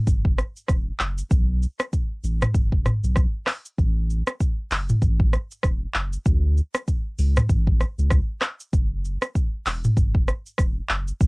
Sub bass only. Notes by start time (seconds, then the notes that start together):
0.07 F#1
0.69 E1
1.00 F#1
1.31 B1
2.24 A1
2.55 F#1
3.04 B1
3.78 A1
4.71 F#1
5.02 A1
5.64 E1
5.95 F#1
6.26 D2
7.19 C#2
7.49 A1
7.98 C#2
8.73 F#1
9.66 E1
9.97 F#1
10.59 E1
10.90 F#1
11.21 B1